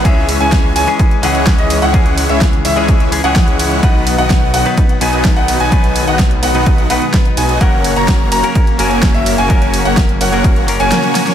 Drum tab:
RD |--x---x---x---x-|--x---x---x---x-|--x---x---x---x-|--x---x---x---x-|
HH |x-oxx-oxxxoxxxox|xxoxxxoxxxoxxxox|x-oxx-oxxxoxxxox|xxoxxxoxxxoxxxox|
SD |----o-------o---|----o-------o---|----o-------o---|----o-------o---|
BD |o---o---o---o---|o---o---o---o---|o---o---o---o---|o---o---o---o---|

RD |--x---x---x---x-|--x---x---x---x-|
HH |x-oxx-oxxxoxxxox|xxoxxxoxxxoxxxox|
SD |----o-------o---|----o-------oooo|
BD |o---o---o---o---|o---o---o-------|